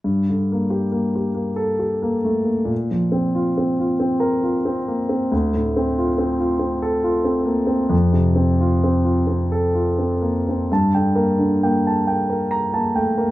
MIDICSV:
0, 0, Header, 1, 2, 480
1, 0, Start_track
1, 0, Key_signature, -2, "minor"
1, 0, Tempo, 884956
1, 28, Time_signature, 3, 2, 24, 8
1, 1947, Tempo, 865801
1, 4347, Tempo, 894188
1, 4827, Tempo, 930233
1, 6267, Tempo, 883652
1, 7195, End_track
2, 0, Start_track
2, 0, Title_t, "Grand piano"
2, 0, Program_c, 0, 0
2, 24, Note_on_c, 0, 43, 37
2, 111, Control_c, 0, 64, 127
2, 160, Note_on_c, 0, 50, 28
2, 282, Note_on_c, 0, 58, 30
2, 347, Note_off_c, 0, 50, 0
2, 381, Note_on_c, 0, 67, 32
2, 468, Note_off_c, 0, 58, 0
2, 498, Note_on_c, 0, 58, 30
2, 576, Note_off_c, 0, 67, 0
2, 626, Note_on_c, 0, 67, 31
2, 695, Note_off_c, 0, 58, 0
2, 730, Note_on_c, 0, 58, 29
2, 818, Note_off_c, 0, 67, 0
2, 847, Note_on_c, 0, 69, 42
2, 930, Note_off_c, 0, 58, 0
2, 973, Note_on_c, 0, 67, 29
2, 1050, Note_off_c, 0, 69, 0
2, 1098, Note_on_c, 0, 58, 33
2, 1173, Note_off_c, 0, 67, 0
2, 1219, Note_on_c, 0, 57, 31
2, 1296, Note_off_c, 0, 58, 0
2, 1325, Note_on_c, 0, 58, 32
2, 1345, Note_off_c, 0, 57, 0
2, 1437, Note_on_c, 0, 46, 42
2, 1447, Note_off_c, 0, 43, 0
2, 1458, Note_off_c, 0, 58, 0
2, 1480, Control_c, 0, 64, 0
2, 1564, Control_c, 0, 64, 127
2, 1578, Note_on_c, 0, 53, 29
2, 1691, Note_on_c, 0, 60, 33
2, 1775, Note_off_c, 0, 53, 0
2, 1817, Note_on_c, 0, 65, 36
2, 1890, Note_off_c, 0, 60, 0
2, 1940, Note_on_c, 0, 60, 37
2, 2013, Note_off_c, 0, 65, 0
2, 2060, Note_on_c, 0, 65, 36
2, 2135, Note_off_c, 0, 60, 0
2, 2173, Note_on_c, 0, 60, 34
2, 2254, Note_off_c, 0, 65, 0
2, 2285, Note_on_c, 0, 70, 47
2, 2369, Note_off_c, 0, 60, 0
2, 2414, Note_on_c, 0, 65, 35
2, 2485, Note_off_c, 0, 70, 0
2, 2537, Note_on_c, 0, 60, 37
2, 2609, Note_off_c, 0, 65, 0
2, 2661, Note_on_c, 0, 58, 33
2, 2732, Note_off_c, 0, 60, 0
2, 2780, Note_on_c, 0, 60, 36
2, 2783, Note_off_c, 0, 58, 0
2, 2865, Note_off_c, 0, 46, 0
2, 2904, Note_off_c, 0, 60, 0
2, 2905, Note_on_c, 0, 38, 47
2, 2915, Control_c, 0, 64, 0
2, 3013, Control_c, 0, 64, 127
2, 3028, Note_on_c, 0, 45, 35
2, 3153, Note_on_c, 0, 60, 36
2, 3220, Note_off_c, 0, 45, 0
2, 3273, Note_on_c, 0, 65, 38
2, 3340, Note_off_c, 0, 60, 0
2, 3384, Note_on_c, 0, 60, 37
2, 3458, Note_off_c, 0, 65, 0
2, 3502, Note_on_c, 0, 65, 37
2, 3573, Note_off_c, 0, 60, 0
2, 3612, Note_on_c, 0, 60, 34
2, 3692, Note_off_c, 0, 65, 0
2, 3740, Note_on_c, 0, 69, 47
2, 3808, Note_off_c, 0, 60, 0
2, 3857, Note_on_c, 0, 65, 36
2, 3933, Note_off_c, 0, 69, 0
2, 3973, Note_on_c, 0, 60, 36
2, 4053, Note_off_c, 0, 65, 0
2, 4090, Note_on_c, 0, 58, 34
2, 4172, Note_off_c, 0, 60, 0
2, 4208, Note_on_c, 0, 60, 37
2, 4219, Note_off_c, 0, 58, 0
2, 4326, Note_off_c, 0, 38, 0
2, 4335, Note_on_c, 0, 41, 47
2, 4340, Note_off_c, 0, 60, 0
2, 4359, Control_c, 0, 64, 0
2, 4456, Control_c, 0, 64, 127
2, 4460, Note_on_c, 0, 48, 35
2, 4581, Note_on_c, 0, 60, 37
2, 4656, Note_off_c, 0, 48, 0
2, 4715, Note_on_c, 0, 65, 38
2, 4777, Note_off_c, 0, 60, 0
2, 4840, Note_on_c, 0, 60, 35
2, 4901, Note_off_c, 0, 65, 0
2, 4947, Note_on_c, 0, 65, 36
2, 5021, Note_off_c, 0, 60, 0
2, 5064, Note_on_c, 0, 60, 35
2, 5136, Note_off_c, 0, 65, 0
2, 5191, Note_on_c, 0, 69, 46
2, 5256, Note_off_c, 0, 60, 0
2, 5308, Note_on_c, 0, 65, 30
2, 5381, Note_off_c, 0, 69, 0
2, 5432, Note_on_c, 0, 60, 30
2, 5504, Note_off_c, 0, 65, 0
2, 5550, Note_on_c, 0, 58, 30
2, 5631, Note_off_c, 0, 60, 0
2, 5676, Note_off_c, 0, 58, 0
2, 5690, Note_on_c, 0, 60, 31
2, 5770, Note_off_c, 0, 41, 0
2, 5804, Note_off_c, 0, 60, 0
2, 5807, Control_c, 0, 64, 0
2, 5809, Note_on_c, 0, 43, 46
2, 5815, Note_on_c, 0, 81, 42
2, 5897, Control_c, 0, 64, 127
2, 5927, Note_on_c, 0, 79, 36
2, 5928, Note_on_c, 0, 50, 29
2, 5996, Note_off_c, 0, 81, 0
2, 6035, Note_on_c, 0, 70, 39
2, 6039, Note_on_c, 0, 58, 35
2, 6111, Note_off_c, 0, 50, 0
2, 6111, Note_off_c, 0, 79, 0
2, 6154, Note_on_c, 0, 50, 39
2, 6222, Note_off_c, 0, 70, 0
2, 6224, Note_off_c, 0, 58, 0
2, 6283, Note_on_c, 0, 79, 38
2, 6285, Note_on_c, 0, 58, 37
2, 6341, Note_off_c, 0, 50, 0
2, 6411, Note_on_c, 0, 81, 36
2, 6467, Note_off_c, 0, 79, 0
2, 6468, Note_off_c, 0, 58, 0
2, 6522, Note_on_c, 0, 58, 35
2, 6522, Note_on_c, 0, 79, 38
2, 6590, Note_off_c, 0, 81, 0
2, 6644, Note_on_c, 0, 70, 37
2, 6705, Note_off_c, 0, 58, 0
2, 6705, Note_off_c, 0, 79, 0
2, 6759, Note_on_c, 0, 82, 50
2, 6827, Note_off_c, 0, 70, 0
2, 6882, Note_on_c, 0, 58, 34
2, 6883, Note_on_c, 0, 81, 38
2, 6945, Note_off_c, 0, 82, 0
2, 7000, Note_on_c, 0, 57, 33
2, 7001, Note_on_c, 0, 79, 40
2, 7068, Note_off_c, 0, 58, 0
2, 7068, Note_off_c, 0, 81, 0
2, 7115, Note_off_c, 0, 57, 0
2, 7122, Note_on_c, 0, 70, 38
2, 7123, Note_on_c, 0, 58, 35
2, 7187, Note_off_c, 0, 79, 0
2, 7195, Note_off_c, 0, 43, 0
2, 7195, Note_off_c, 0, 58, 0
2, 7195, Note_off_c, 0, 70, 0
2, 7195, End_track
0, 0, End_of_file